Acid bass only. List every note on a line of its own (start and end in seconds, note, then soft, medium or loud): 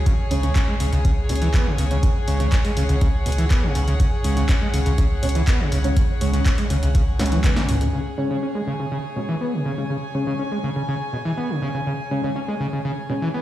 0.06 0.13 C#3 medium
0.31 0.41 C#3 medium
0.43 0.50 C#3 medium
0.55 0.60 C#4 medium
0.68 0.75 G#3 medium
0.80 0.87 C#3 loud
0.92 0.99 C#3 medium
1.05 1.11 C#3 loud
1.29 1.33 B2 medium
1.42 1.48 E3 loud
1.54 1.68 B3 medium
1.66 1.76 C#3 medium
1.79 1.85 C#3 loud
1.91 1.98 C#3 medium
2.03 2.10 C#3 medium
2.28 2.38 C#3 medium
2.40 2.47 C#3 medium
2.52 2.56 C#4 medium
2.65 2.71 G#3 medium
2.77 2.84 C#3 loud
2.89 2.96 C#3 medium
3.01 3.08 C#3 loud
3.26 3.30 B2 medium
3.38 3.45 E3 loud
3.50 3.65 B3 medium
3.63 3.73 C#3 medium
3.75 3.82 C#3 loud
3.88 3.94 C#3 medium
4.00 4.07 C#3 medium
4.25 4.35 C#3 medium
4.37 4.43 C#3 loud
4.49 4.53 C#4 medium
4.61 4.68 G#3 medium
4.74 4.80 C#3 loud
4.86 4.93 C#3 medium
4.98 5.05 C#3 loud
5.23 5.27 B2 medium
5.35 5.42 E3 loud
5.47 5.61 B3 medium
5.60 5.70 C#3 medium
5.72 5.79 C#3 loud
5.84 5.91 C#3 medium
5.97 6.03 C#3 medium
6.21 6.31 C#3 medium
6.34 6.40 C#3 loud
6.46 6.50 C#4 medium
6.58 6.65 G#3 medium
6.70 6.77 C#3 loud
6.83 6.89 C#3 medium
6.95 7.02 C#3 loud
7.20 7.24 B2 medium
7.32 7.39 E3 loud
7.44 7.58 B3 medium
7.57 7.67 C#3 medium
7.69 7.75 C#3 loud
7.81 7.88 C#3 medium
7.93 8.00 C#3 medium
8.18 8.28 C#3 medium
8.30 8.37 C#3 loud
8.43 8.47 C#4 medium
8.55 8.62 G#3 medium
8.67 8.74 C#3 loud
8.79 8.86 C#3 medium
8.91 8.98 C#3 loud
9.16 9.20 B2 medium
9.29 9.35 E3 loud
9.41 9.55 B3 medium
9.53 9.63 C#3 medium
9.65 9.72 C#3 medium
9.78 9.84 C#3 medium
9.90 9.97 C#3 medium
10.14 10.25 C#3 medium
10.27 10.34 C#3 medium
10.39 10.43 C#4 medium
10.51 10.58 G#3 medium
10.64 10.70 C#3 loud
10.76 10.83 C#3 medium
10.88 10.95 C#3 loud
11.13 11.17 B2 medium
11.25 11.32 E3 loud
11.37 11.51 B3 medium
11.50 11.60 C#3 medium
11.62 11.69 C#3 medium
11.74 11.81 C#3 medium
11.87 11.93 C#3 medium
12.11 12.21 C#3 medium
12.24 12.30 C#3 loud
12.36 12.40 C#4 medium
12.48 12.55 G#3 medium
12.60 12.67 C#3 loud
12.73 12.79 C#3 medium
12.85 12.92 C#3 loud
13.09 13.14 B2 medium
13.22 13.29 E3 loud
13.34 13.42 B3 medium